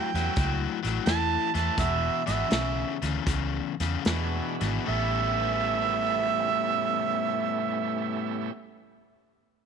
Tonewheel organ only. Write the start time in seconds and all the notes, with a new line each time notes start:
0.15 A3 B3 C#4 E4 G5
4.05 G#3 B3 D4 E4 F#4
4.87 A3 B3 C#4 E4 G4